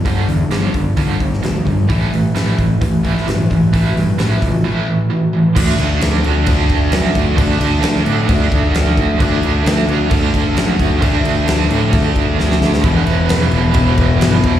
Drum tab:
CC |----------------|----------------|----------------|x-x-x-x-x-x-x-x-|
HH |o-o-o-o-o-o-o-o-|o-o-o-o-o-o-o-o-|o-o-o-o---------|----------------|
SD |----o------oo---|----o------oo---|----o-----------|----oo------o---|
BD |o-----o-o-o---o-|o-----o-o-o---o-|o-----o---------|o-------o-o---o-|

CC |x-x-x-x-x-x-x-x-|x-x-x-x-x-x-x-x-|x-x-x-x-x-x-----|x-x-x-x-x-x-x-x-|
HH |----------------|----------------|----------------|----------------|
SD |----oo------o---|----oo------o---|----o-------oooo|----oo------o---|
BD |o-------o-o---o-|o-------o-o---o-|o-------o-o-----|o-------o-o---o-|